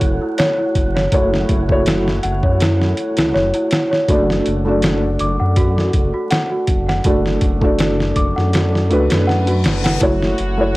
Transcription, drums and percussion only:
0.01 kick medium
0.01 closed hi-hat medium
0.38 snare loud
0.38 closed hi-hat medium
0.75 kick medium
0.75 closed hi-hat medium
0.97 snare soft
1.12 kick loud
1.12 closed hi-hat medium
1.34 snare soft
1.49 kick medium
1.49 closed hi-hat medium
1.69 kick medium
1.86 snare loud
1.86 closed hi-hat medium
2.08 snare soft
2.23 closed hi-hat medium
2.43 kick medium
2.60 snare loud
2.60 closed hi-hat medium
2.82 snare soft
2.97 closed hi-hat medium
3.17 snare loud
3.17 closed hi-hat medium
3.36 snare soft
3.54 closed hi-hat medium
3.71 snare loud
3.71 closed hi-hat medium
3.93 snare soft
4.08 kick loud
4.08 closed hi-hat medium
4.30 snare soft
4.46 closed hi-hat medium
4.82 snare loud
4.82 closed hi-hat medium
5.19 closed hi-hat medium
5.56 kick loud
5.56 closed hi-hat medium
5.78 snare soft
5.93 kick medium
5.93 closed hi-hat medium
6.31 snare loud
6.31 closed hi-hat medium
6.67 kick medium
6.67 closed hi-hat medium
6.89 snare soft
7.04 kick loud
7.04 closed hi-hat medium
7.26 snare soft
7.41 kick medium
7.41 closed hi-hat medium
7.62 kick medium
7.79 snare loud
7.79 closed hi-hat medium
8.00 snare soft
8.16 kick medium
8.16 closed hi-hat medium
8.38 snare soft
8.53 snare loud
8.53 closed hi-hat medium
8.75 snare soft
8.91 closed hi-hat medium
9.10 snare medium
9.10 closed hi-hat medium
9.29 snare soft
9.47 closed hi-hat medium
9.64 snare medium
9.64 closed hi-hat medium
9.84 snare loud
9.84 closed hi-hat medium
10.01 kick loud
10.01 closed hi-hat medium
10.22 snare soft
10.38 closed hi-hat medium

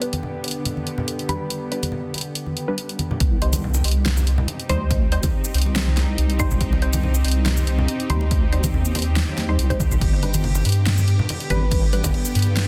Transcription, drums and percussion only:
0.02 closed hi-hat soft
0.13 closed hi-hat medium
0.13 high conga medium
0.23 low conga medium
0.44 closed hi-hat soft
0.48 closed hi-hat medium
0.51 closed hi-hat medium
0.65 closed hi-hat medium
0.65 low conga medium
0.77 high conga medium
0.87 closed hi-hat soft
0.98 low conga medium
1.08 closed hi-hat medium
1.19 closed hi-hat soft
1.29 closed hi-hat medium
1.29 high conga medium
1.50 closed hi-hat medium
1.72 closed hi-hat medium
1.83 closed hi-hat medium
1.83 high conga medium
1.92 low conga medium
2.14 closed hi-hat soft
2.14 muted conga soft
2.18 closed hi-hat medium
2.21 closed hi-hat medium
2.35 closed hi-hat medium
2.46 high conga medium
2.57 closed hi-hat soft
2.78 closed hi-hat medium
2.89 closed hi-hat soft
2.99 closed hi-hat medium
2.99 high conga medium
3.11 low conga medium
3.20 kick loud
3.20 closed hi-hat medium
3.42 closed hi-hat medium
3.42 muted conga medium
3.53 closed hi-hat medium
3.53 high conga loud
3.53 shaker medium
3.64 low conga medium
3.74 muted conga medium
3.74 shaker medium
3.84 closed hi-hat medium
3.84 open hi-hat medium
3.91 closed hi-hat medium
4.06 snare loud
4.06 closed hi-hat medium
4.06 low conga medium
4.17 muted conga medium
4.17 high conga medium
4.17 shaker medium
4.27 closed hi-hat medium
4.38 low conga loud
4.48 closed hi-hat medium
4.48 muted conga medium
4.60 closed hi-hat soft
4.69 closed hi-hat medium
4.69 high conga medium
4.91 kick loud
4.91 closed hi-hat medium
4.91 muted conga medium
5.12 closed hi-hat medium
5.23 kick medium
5.23 closed hi-hat medium
5.23 muted conga medium
5.23 high conga loud
5.23 shaker medium
5.45 shaker medium
5.54 closed hi-hat medium
5.54 open hi-hat medium
5.62 closed hi-hat medium
5.66 muted conga medium
5.76 snare loud
5.76 closed hi-hat medium
5.87 high conga medium
5.97 snare medium
5.97 closed hi-hat medium
5.97 muted conga medium
6.18 closed hi-hat medium
6.30 closed hi-hat soft
6.39 kick loud
6.39 closed hi-hat medium
6.39 muted conga medium
6.39 high conga medium
6.39 shaker medium
6.51 low conga medium
6.51 shaker medium
6.61 kick loud
6.61 closed hi-hat medium
6.73 muted conga medium
6.82 closed hi-hat medium
6.93 closed hi-hat medium
6.93 high conga loud
6.93 shaker medium
7.03 low conga medium
7.15 muted conga soft
7.15 shaker medium
7.25 closed hi-hat medium
7.25 open hi-hat medium
7.31 closed hi-hat medium
7.46 snare loud
7.46 closed hi-hat medium
7.46 muted conga medium
7.46 low conga medium
7.57 high conga medium
7.57 shaker medium
7.67 closed hi-hat medium
7.78 low conga medium
7.88 closed hi-hat medium
7.88 muted conga soft
8.00 closed hi-hat soft
8.10 closed hi-hat medium
8.10 high conga loud
8.21 muted conga medium
8.31 kick loud
8.31 closed hi-hat medium
8.53 closed hi-hat medium
8.63 kick medium
8.63 closed hi-hat medium
8.63 muted conga medium
8.63 high conga loud
8.63 shaker medium
8.74 low conga medium
8.85 shaker medium
8.95 closed hi-hat medium
8.95 open hi-hat medium
8.95 muted conga medium
9.02 closed hi-hat medium
9.16 snare loud
9.16 closed hi-hat medium
9.28 high conga medium
9.37 snare medium
9.37 closed hi-hat medium
9.37 muted conga soft
9.59 closed hi-hat medium
9.70 kick medium
9.70 closed hi-hat soft
9.70 muted conga medium
9.80 kick loud
9.80 closed hi-hat medium
9.80 high conga medium
9.80 shaker medium
9.91 low conga medium
9.91 shaker medium
10.01 kick loud
10.01 closed hi-hat medium
10.01 crash medium
10.23 closed hi-hat medium
10.23 muted conga soft
10.34 closed hi-hat medium
10.34 high conga medium
10.34 shaker medium
10.44 crash soft
10.44 low conga medium
10.55 muted conga medium
10.55 shaker medium
10.65 closed hi-hat medium
10.65 open hi-hat medium
10.72 closed hi-hat medium
10.86 snare loud
10.86 closed hi-hat medium
10.86 crash medium
10.86 low conga medium
10.98 muted conga soft
10.98 high conga medium
10.98 shaker medium
11.08 closed hi-hat medium
11.19 low conga medium
11.29 closed hi-hat medium
11.29 crash soft
11.29 muted conga medium
11.40 closed hi-hat soft
11.50 closed hi-hat medium
11.50 high conga loud
11.71 kick loud
11.71 closed hi-hat medium
11.71 crash medium
11.71 muted conga soft
11.93 closed hi-hat medium
12.04 kick medium
12.04 closed hi-hat medium
12.04 muted conga medium
12.04 high conga medium
12.04 shaker medium
12.14 crash soft
12.25 shaker medium
12.35 closed hi-hat medium
12.35 open hi-hat medium
12.42 closed hi-hat medium
12.47 muted conga soft
12.57 snare loud
12.57 closed hi-hat medium
12.57 crash medium

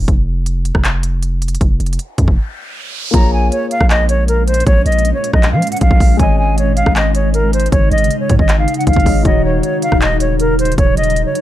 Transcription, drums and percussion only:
0.08 kick loud
0.08 closed hi-hat medium
0.46 closed hi-hat medium
0.65 closed hi-hat medium
0.75 kick medium
0.75 cross-stick medium
0.84 clap loud
0.84 closed hi-hat medium
1.03 closed hi-hat medium
1.23 closed hi-hat medium
1.42 closed hi-hat medium
1.48 closed hi-hat medium
1.55 closed hi-hat medium
1.61 kick loud
1.61 closed hi-hat medium
1.80 closed hi-hat soft
1.86 closed hi-hat medium
1.93 closed hi-hat medium
1.99 closed hi-hat medium
2.18 kick loud
2.18 closed hi-hat medium
2.28 kick loud
3.14 kick loud
3.14 closed hi-hat medium
3.52 closed hi-hat medium
3.71 closed hi-hat medium
3.81 kick medium
3.81 cross-stick medium
3.90 clap loud
3.90 closed hi-hat medium
4.09 closed hi-hat medium
4.28 closed hi-hat medium
4.48 closed hi-hat medium
4.54 closed hi-hat medium
4.60 closed hi-hat medium
4.67 kick loud
4.67 closed hi-hat medium
4.86 closed hi-hat medium
4.92 closed hi-hat medium
4.99 closed hi-hat soft
5.05 closed hi-hat medium
5.24 closed hi-hat medium
5.33 kick medium
5.33 cross-stick medium
5.43 clap loud
5.43 closed hi-hat medium
5.62 closed hi-hat medium
5.67 closed hi-hat medium
5.72 closed hi-hat medium
5.77 closed hi-hat medium
5.81 kick loud
5.81 closed hi-hat medium
5.91 kick loud
6.00 kick loud
6.00 open hi-hat medium
6.19 kick loud
6.19 closed hi-hat medium
6.58 closed hi-hat medium
6.77 closed hi-hat medium
6.86 kick medium
6.86 cross-stick medium
6.96 clap loud
6.96 closed hi-hat medium
7.15 closed hi-hat medium
7.34 closed hi-hat medium
7.53 closed hi-hat medium
7.60 closed hi-hat medium
7.66 closed hi-hat medium
7.72 kick loud
7.72 closed hi-hat medium
7.91 closed hi-hat soft
7.98 closed hi-hat medium
8.04 closed hi-hat medium
8.11 closed hi-hat medium
8.29 kick loud
8.29 closed hi-hat medium
8.39 kick loud
8.49 clap loud
8.49 closed hi-hat medium
8.68 closed hi-hat medium
8.74 closed hi-hat medium
8.81 closed hi-hat soft
8.87 kick loud
8.87 closed hi-hat medium
8.93 kick loud
8.93 closed hi-hat medium
9.00 closed hi-hat soft
9.06 kick medium
9.06 open hi-hat medium
9.25 kick loud
9.25 closed hi-hat medium
9.63 closed hi-hat medium
9.82 closed hi-hat medium
9.92 kick loud
9.92 cross-stick medium
10.02 clap loud
10.02 closed hi-hat medium
10.20 closed hi-hat medium
10.40 closed hi-hat medium
10.59 closed hi-hat medium
10.65 closed hi-hat medium
10.72 closed hi-hat medium
10.78 kick loud
10.78 closed hi-hat medium
10.97 closed hi-hat medium
11.04 closed hi-hat medium
11.10 closed hi-hat soft
11.16 closed hi-hat medium
11.35 closed hi-hat medium

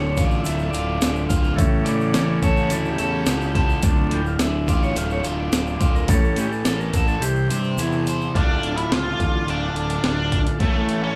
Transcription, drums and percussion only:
0.17 kick medium
0.17 closed hi-hat medium
0.17 shaker medium
0.31 shaker soft
0.45 closed hi-hat medium
0.45 shaker loud
0.59 shaker soft
0.73 closed hi-hat medium
0.73 shaker medium
1.01 snare loud
1.01 closed hi-hat medium
1.01 shaker loud
1.16 shaker soft
1.30 kick medium
1.30 closed hi-hat medium
1.30 shaker medium
1.44 shaker soft
1.58 kick loud
1.58 closed hi-hat medium
1.58 shaker loud
1.86 closed hi-hat medium
1.86 shaker medium
2.01 shaker soft
2.14 snare loud
2.14 closed hi-hat medium
2.14 shaker loud
2.43 kick medium
2.43 closed hi-hat medium
2.43 shaker medium
2.57 shaker soft
2.70 closed hi-hat medium
2.70 shaker loud
2.85 shaker soft
2.98 closed hi-hat medium
2.98 shaker medium
3.26 snare loud
3.26 closed hi-hat medium
3.26 shaker loud
3.41 shaker soft
3.55 kick medium
3.55 snare soft
3.55 closed hi-hat medium
3.69 shaker soft
3.83 kick loud
3.83 closed hi-hat medium
3.83 shaker medium
4.11 closed hi-hat medium
4.26 shaker soft
4.39 snare loud
4.39 closed hi-hat medium
4.39 shaker medium
4.68 kick medium
4.68 closed hi-hat medium
4.68 shaker medium
4.83 shaker soft
4.96 closed hi-hat medium
4.96 shaker loud
5.10 shaker soft
5.24 closed hi-hat medium
5.24 shaker medium
5.53 snare loud
5.53 closed hi-hat medium
5.53 shaker loud
5.67 shaker soft
5.81 kick medium
5.81 closed hi-hat medium
5.81 shaker medium
5.96 shaker soft
6.08 kick loud
6.08 closed hi-hat medium
6.08 shaker loud
6.24 shaker soft
6.36 closed hi-hat medium
6.36 shaker medium
6.52 shaker soft
6.65 snare loud
6.65 closed hi-hat medium
6.65 shaker loud
6.81 shaker soft
6.93 kick medium
6.93 closed hi-hat medium
6.93 shaker medium
7.08 shaker soft
7.22 closed hi-hat medium
7.22 shaker loud
7.50 closed hi-hat medium
7.50 shaker medium
7.64 shaker soft
7.78 closed hi-hat medium
7.78 shaker loud
7.92 shaker soft
8.07 closed hi-hat medium
8.07 shaker medium
8.21 shaker soft
8.35 kick loud
8.35 closed hi-hat medium
8.63 closed hi-hat medium
8.78 closed hi-hat medium
8.92 snare loud
8.92 closed hi-hat medium
9.20 kick medium
9.20 closed hi-hat medium
9.48 closed hi-hat medium
9.76 closed hi-hat medium
9.90 closed hi-hat medium
10.04 snare loud
10.04 closed hi-hat medium
10.32 kick medium
10.32 closed hi-hat medium
10.47 closed hi-hat medium
10.60 kick loud
10.60 closed hi-hat medium
10.89 closed hi-hat medium

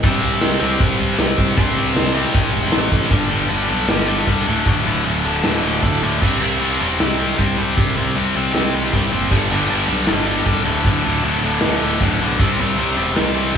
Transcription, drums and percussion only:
0.03 kick loud
0.03 crash medium
0.41 snare loud
0.41 crash medium
0.80 kick loud
0.80 crash medium
1.18 snare loud
1.18 crash medium
1.38 kick medium
1.57 kick loud
1.57 crash medium
1.96 snare loud
1.96 crash medium
2.34 kick loud
2.34 crash medium
2.72 snare loud
2.72 crash medium
2.92 kick medium
3.11 kick loud
3.11 open hi-hat medium
3.50 open hi-hat medium
3.88 snare loud
3.88 open hi-hat medium
4.27 kick medium
4.27 open hi-hat medium
4.66 kick loud
4.66 open hi-hat medium
5.06 open hi-hat medium
5.43 snare loud
5.43 open hi-hat medium
5.83 kick medium
5.83 open hi-hat medium
6.22 kick loud
6.22 crash medium
6.61 open hi-hat medium
7.00 snare loud
7.00 open hi-hat medium
7.39 kick medium
7.39 open hi-hat medium
7.77 kick loud
7.77 open hi-hat medium
8.17 open hi-hat medium
8.54 snare loud
8.54 open hi-hat medium
8.93 kick medium
8.93 open hi-hat medium
9.31 kick loud
9.31 crash loud
9.69 open hi-hat medium
10.07 snare loud
10.07 open hi-hat medium
10.45 kick medium
10.45 open hi-hat medium
10.84 kick loud
10.84 open hi-hat medium
11.23 open hi-hat medium
11.61 snare loud
11.61 open hi-hat medium
12.00 kick medium
12.00 open hi-hat medium
12.40 kick loud
12.40 crash loud
12.79 open hi-hat medium
13.16 snare loud
13.16 open hi-hat medium

